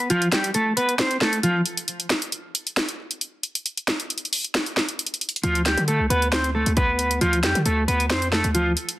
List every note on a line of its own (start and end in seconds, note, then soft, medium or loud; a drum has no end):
0.10 0.27 F3 medium
0.10 0.27 F4 loud
0.10 closed hi-hat medium
0.22 closed hi-hat medium
0.32 0.50 G3 medium
0.32 0.49 G4 medium
0.32 snare loud
0.32 clap medium
0.32 closed hi-hat medium
0.44 closed hi-hat medium
0.54 0.72 A3 medium
0.54 0.71 A4 medium
0.54 closed hi-hat medium
0.77 0.94 B3 medium
0.77 0.94 B4 medium
0.77 closed hi-hat medium
0.89 closed hi-hat medium
0.99 1.16 C4 medium
0.99 1.16 C5 medium
0.99 snare loud
0.99 clap medium
0.99 closed hi-hat medium
1.11 closed hi-hat medium
1.21 1.39 A3 medium
1.21 1.38 A4 medium
1.21 snare medium
1.21 clap medium
1.33 closed hi-hat medium
1.43 1.61 F3 medium
1.43 1.60 F4 medium
1.43 closed hi-hat medium
1.66 closed hi-hat medium
1.77 closed hi-hat medium
1.88 closed hi-hat medium
2.00 closed hi-hat medium
2.10 snare loud
2.10 clap medium
2.10 closed hi-hat medium
2.22 closed hi-hat medium
2.32 closed hi-hat medium
2.55 closed hi-hat medium
2.67 closed hi-hat medium
2.77 snare loud
2.77 clap medium
2.77 closed hi-hat medium
2.89 closed hi-hat medium
3.11 closed hi-hat medium
3.21 closed hi-hat medium
3.43 closed hi-hat medium
3.55 closed hi-hat medium
3.66 closed hi-hat medium
3.77 closed hi-hat medium
3.88 snare loud
3.88 clap medium
3.88 closed hi-hat medium
4.00 closed hi-hat medium
4.10 closed hi-hat medium
4.18 closed hi-hat medium
4.25 closed hi-hat soft
4.33 open hi-hat medium
4.44 closed hi-hat medium
4.55 snare loud
4.55 clap medium
4.55 closed hi-hat medium
4.66 closed hi-hat medium
4.77 snare medium
4.77 clap medium
4.89 closed hi-hat medium
4.99 closed hi-hat medium
5.07 closed hi-hat medium
5.14 closed hi-hat medium
5.21 closed hi-hat medium
5.29 closed hi-hat medium
5.36 closed hi-hat medium
5.43 5.76 D2 loud
5.43 5.61 F3 medium
5.43 5.60 F4 loud
5.43 closed hi-hat medium
5.55 closed hi-hat medium
5.66 5.83 G3 medium
5.66 5.83 G4 medium
5.66 snare loud
5.66 clap medium
5.66 closed hi-hat medium
5.77 6.01 D3 loud
5.77 closed hi-hat medium
5.88 6.05 A3 medium
5.88 6.05 A4 medium
5.88 closed hi-hat medium
6.00 6.10 C2 loud
6.10 6.64 D2 loud
6.10 6.28 B3 medium
6.10 6.27 B4 medium
6.10 closed hi-hat medium
6.22 closed hi-hat medium
6.32 6.50 C4 medium
6.32 6.49 C5 medium
6.32 snare loud
6.32 clap medium
6.32 closed hi-hat medium
6.44 closed hi-hat medium
6.55 6.72 A3 medium
6.55 6.72 A4 medium
6.66 7.19 D2 loud
6.66 closed hi-hat medium
6.77 7.19 B3 medium
6.77 7.19 B4 medium
6.77 kick medium
6.77 closed hi-hat medium
6.99 closed hi-hat medium
7.11 closed hi-hat medium
7.21 7.45 D2 loud
7.21 7.39 F3 medium
7.21 7.38 F4 loud
7.21 closed hi-hat medium
7.33 closed hi-hat medium
7.43 7.55 F2 loud
7.43 7.61 G3 medium
7.43 7.60 G4 medium
7.43 snare loud
7.43 clap medium
7.43 closed hi-hat medium
7.55 7.65 D3 loud
7.55 closed hi-hat medium
7.66 7.87 D2 loud
7.66 7.83 A3 medium
7.66 7.83 A4 medium
7.66 closed hi-hat medium
7.88 8.12 D2 loud
7.88 8.05 B3 medium
7.88 8.05 B4 medium
7.88 closed hi-hat medium
8.00 closed hi-hat medium
8.10 8.42 F2 loud
8.10 8.28 C4 medium
8.10 8.27 C5 medium
8.10 snare loud
8.10 clap medium
8.10 closed hi-hat medium
8.22 closed hi-hat medium
8.32 8.50 A3 medium
8.32 8.49 A4 medium
8.32 snare medium
8.32 clap medium
8.44 8.76 D2 loud
8.44 closed hi-hat medium
8.54 8.72 F3 medium
8.54 8.71 F4 medium
8.54 closed hi-hat medium
8.77 closed hi-hat medium
8.89 closed hi-hat medium